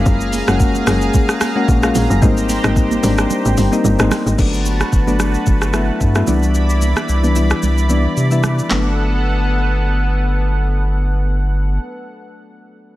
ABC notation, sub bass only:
X:1
M:4/4
L:1/8
Q:"Swing 16ths" 1/4=111
K:G
V:1 name="Sub bass" clef=bass
z8 | z8 | G,,,2 G,,,2 G,,,2 G,, C,,- | C,,2 C,,2 C,,2 C,2 |
G,,,8- | G,,,8 |]